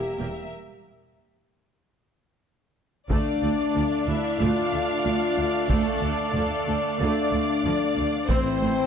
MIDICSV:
0, 0, Header, 1, 11, 480
1, 0, Start_track
1, 0, Key_signature, -1, "minor"
1, 0, Tempo, 648649
1, 380, Time_signature, 4, 2, 24, 8
1, 6559, End_track
2, 0, Start_track
2, 0, Title_t, "Violin section"
2, 0, Program_c, 0, 48
2, 0, Note_on_c, 0, 76, 52
2, 355, Note_off_c, 0, 76, 0
2, 2293, Note_on_c, 0, 74, 68
2, 2988, Note_off_c, 0, 74, 0
2, 3015, Note_on_c, 0, 76, 60
2, 3248, Note_on_c, 0, 77, 83
2, 3254, Note_off_c, 0, 76, 0
2, 4214, Note_on_c, 0, 69, 71
2, 4215, Note_off_c, 0, 77, 0
2, 4682, Note_off_c, 0, 69, 0
2, 4691, Note_on_c, 0, 69, 67
2, 5166, Note_off_c, 0, 69, 0
2, 5184, Note_on_c, 0, 74, 90
2, 6123, Note_off_c, 0, 74, 0
2, 6136, Note_on_c, 0, 72, 73
2, 6559, Note_off_c, 0, 72, 0
2, 6559, End_track
3, 0, Start_track
3, 0, Title_t, "Trumpet section"
3, 0, Program_c, 1, 61
3, 2295, Note_on_c, 1, 74, 56
3, 6108, Note_off_c, 1, 74, 0
3, 6140, Note_on_c, 1, 72, 70
3, 6559, Note_off_c, 1, 72, 0
3, 6559, End_track
4, 0, Start_track
4, 0, Title_t, "Violin section"
4, 0, Program_c, 2, 48
4, 0, Note_on_c, 2, 70, 43
4, 378, Note_off_c, 2, 70, 0
4, 2298, Note_on_c, 2, 77, 61
4, 2299, Note_on_c, 2, 74, 60
4, 6110, Note_off_c, 2, 74, 0
4, 6110, Note_off_c, 2, 77, 0
4, 6139, Note_on_c, 2, 72, 73
4, 6559, Note_off_c, 2, 72, 0
4, 6559, End_track
5, 0, Start_track
5, 0, Title_t, "French horn section"
5, 0, Program_c, 3, 60
5, 0, Note_on_c, 3, 67, 79
5, 386, Note_off_c, 3, 67, 0
5, 2295, Note_on_c, 3, 62, 91
5, 2989, Note_off_c, 3, 62, 0
5, 3013, Note_on_c, 3, 64, 73
5, 3253, Note_on_c, 3, 65, 82
5, 3257, Note_off_c, 3, 64, 0
5, 4217, Note_off_c, 3, 65, 0
5, 4217, Note_on_c, 3, 57, 89
5, 4688, Note_off_c, 3, 57, 0
5, 4696, Note_on_c, 3, 57, 72
5, 5169, Note_off_c, 3, 57, 0
5, 5182, Note_on_c, 3, 62, 87
5, 6142, Note_off_c, 3, 62, 0
5, 6147, Note_on_c, 3, 60, 104
5, 6559, Note_off_c, 3, 60, 0
5, 6559, End_track
6, 0, Start_track
6, 0, Title_t, "Viola section"
6, 0, Program_c, 4, 48
6, 140, Note_on_c, 4, 58, 39
6, 142, Note_on_c, 4, 67, 42
6, 199, Note_off_c, 4, 58, 0
6, 201, Note_off_c, 4, 67, 0
6, 2294, Note_on_c, 4, 62, 60
6, 2297, Note_on_c, 4, 57, 61
6, 2522, Note_off_c, 4, 57, 0
6, 2538, Note_on_c, 4, 57, 47
6, 2597, Note_off_c, 4, 57, 0
6, 2772, Note_on_c, 4, 53, 45
6, 2831, Note_off_c, 4, 53, 0
6, 3017, Note_on_c, 4, 57, 42
6, 3076, Note_off_c, 4, 57, 0
6, 3251, Note_on_c, 4, 57, 57
6, 3479, Note_off_c, 4, 57, 0
6, 3493, Note_on_c, 4, 57, 38
6, 3552, Note_off_c, 4, 57, 0
6, 3731, Note_on_c, 4, 53, 42
6, 3790, Note_off_c, 4, 53, 0
6, 3981, Note_on_c, 4, 57, 50
6, 4040, Note_off_c, 4, 57, 0
6, 4213, Note_on_c, 4, 57, 67
6, 4440, Note_off_c, 4, 57, 0
6, 4454, Note_on_c, 4, 57, 47
6, 4513, Note_off_c, 4, 57, 0
6, 4698, Note_on_c, 4, 53, 49
6, 4758, Note_off_c, 4, 53, 0
6, 4940, Note_on_c, 4, 57, 44
6, 4999, Note_off_c, 4, 57, 0
6, 5186, Note_on_c, 4, 57, 67
6, 5407, Note_off_c, 4, 57, 0
6, 5427, Note_on_c, 4, 57, 55
6, 5486, Note_off_c, 4, 57, 0
6, 5662, Note_on_c, 4, 53, 59
6, 5722, Note_off_c, 4, 53, 0
6, 5900, Note_on_c, 4, 57, 47
6, 5960, Note_off_c, 4, 57, 0
6, 6108, Note_off_c, 4, 62, 0
6, 6134, Note_on_c, 4, 64, 71
6, 6136, Note_on_c, 4, 60, 69
6, 6361, Note_off_c, 4, 60, 0
6, 6378, Note_on_c, 4, 60, 55
6, 6437, Note_off_c, 4, 60, 0
6, 6559, Note_off_c, 4, 64, 0
6, 6559, End_track
7, 0, Start_track
7, 0, Title_t, "Trombone section"
7, 0, Program_c, 5, 61
7, 0, Note_on_c, 5, 55, 54
7, 0, Note_on_c, 5, 58, 55
7, 354, Note_off_c, 5, 55, 0
7, 354, Note_off_c, 5, 58, 0
7, 2298, Note_on_c, 5, 50, 58
7, 2299, Note_on_c, 5, 57, 61
7, 6110, Note_off_c, 5, 50, 0
7, 6110, Note_off_c, 5, 57, 0
7, 6143, Note_on_c, 5, 52, 66
7, 6146, Note_on_c, 5, 57, 74
7, 6559, Note_off_c, 5, 52, 0
7, 6559, Note_off_c, 5, 57, 0
7, 6559, End_track
8, 0, Start_track
8, 0, Title_t, "Timpani"
8, 0, Program_c, 6, 47
8, 6135, Note_on_c, 6, 45, 80
8, 6559, Note_off_c, 6, 45, 0
8, 6559, End_track
9, 0, Start_track
9, 0, Title_t, "Cello section"
9, 0, Program_c, 7, 48
9, 146, Note_on_c, 7, 40, 35
9, 206, Note_off_c, 7, 40, 0
9, 2296, Note_on_c, 7, 38, 71
9, 2355, Note_off_c, 7, 38, 0
9, 2536, Note_on_c, 7, 38, 46
9, 2596, Note_off_c, 7, 38, 0
9, 2779, Note_on_c, 7, 38, 51
9, 2838, Note_off_c, 7, 38, 0
9, 3018, Note_on_c, 7, 38, 39
9, 3077, Note_off_c, 7, 38, 0
9, 3257, Note_on_c, 7, 38, 55
9, 3316, Note_off_c, 7, 38, 0
9, 3499, Note_on_c, 7, 38, 43
9, 3558, Note_off_c, 7, 38, 0
9, 3736, Note_on_c, 7, 38, 50
9, 3795, Note_off_c, 7, 38, 0
9, 3974, Note_on_c, 7, 38, 47
9, 4033, Note_off_c, 7, 38, 0
9, 4213, Note_on_c, 7, 38, 73
9, 4272, Note_off_c, 7, 38, 0
9, 4452, Note_on_c, 7, 38, 51
9, 4511, Note_off_c, 7, 38, 0
9, 4689, Note_on_c, 7, 38, 47
9, 4748, Note_off_c, 7, 38, 0
9, 4935, Note_on_c, 7, 38, 44
9, 4995, Note_off_c, 7, 38, 0
9, 5178, Note_on_c, 7, 38, 72
9, 5237, Note_off_c, 7, 38, 0
9, 5417, Note_on_c, 7, 38, 51
9, 5476, Note_off_c, 7, 38, 0
9, 5657, Note_on_c, 7, 38, 51
9, 5716, Note_off_c, 7, 38, 0
9, 5893, Note_on_c, 7, 38, 56
9, 5952, Note_off_c, 7, 38, 0
9, 6134, Note_on_c, 7, 45, 80
9, 6193, Note_off_c, 7, 45, 0
9, 6375, Note_on_c, 7, 45, 59
9, 6434, Note_off_c, 7, 45, 0
9, 6559, End_track
10, 0, Start_track
10, 0, Title_t, "Double bass section"
10, 0, Program_c, 8, 48
10, 146, Note_on_c, 8, 28, 35
10, 206, Note_off_c, 8, 28, 0
10, 2295, Note_on_c, 8, 38, 69
10, 2355, Note_off_c, 8, 38, 0
10, 2540, Note_on_c, 8, 38, 44
10, 2599, Note_off_c, 8, 38, 0
10, 2784, Note_on_c, 8, 38, 42
10, 2843, Note_off_c, 8, 38, 0
10, 3016, Note_on_c, 8, 38, 45
10, 3075, Note_off_c, 8, 38, 0
10, 3259, Note_on_c, 8, 38, 78
10, 3318, Note_off_c, 8, 38, 0
10, 3498, Note_on_c, 8, 38, 49
10, 3558, Note_off_c, 8, 38, 0
10, 3740, Note_on_c, 8, 38, 54
10, 3799, Note_off_c, 8, 38, 0
10, 3976, Note_on_c, 8, 38, 44
10, 4035, Note_off_c, 8, 38, 0
10, 4220, Note_on_c, 8, 38, 65
10, 4279, Note_off_c, 8, 38, 0
10, 4461, Note_on_c, 8, 38, 50
10, 4520, Note_off_c, 8, 38, 0
10, 4700, Note_on_c, 8, 38, 44
10, 4759, Note_off_c, 8, 38, 0
10, 4944, Note_on_c, 8, 38, 43
10, 5003, Note_off_c, 8, 38, 0
10, 5184, Note_on_c, 8, 38, 83
10, 5244, Note_off_c, 8, 38, 0
10, 5422, Note_on_c, 8, 38, 56
10, 5482, Note_off_c, 8, 38, 0
10, 5661, Note_on_c, 8, 38, 58
10, 5720, Note_off_c, 8, 38, 0
10, 5902, Note_on_c, 8, 38, 44
10, 5961, Note_off_c, 8, 38, 0
10, 6141, Note_on_c, 8, 33, 68
10, 6200, Note_off_c, 8, 33, 0
10, 6382, Note_on_c, 8, 33, 54
10, 6441, Note_off_c, 8, 33, 0
10, 6559, End_track
11, 0, Start_track
11, 0, Title_t, "Taiko and cinematic ensemble drums"
11, 2295, Note_on_c, 9, 41, 84
11, 2369, Note_off_c, 9, 41, 0
11, 4210, Note_on_c, 9, 41, 81
11, 4284, Note_off_c, 9, 41, 0
11, 4694, Note_on_c, 9, 43, 49
11, 4768, Note_off_c, 9, 43, 0
11, 6134, Note_on_c, 9, 41, 87
11, 6208, Note_off_c, 9, 41, 0
11, 6559, End_track
0, 0, End_of_file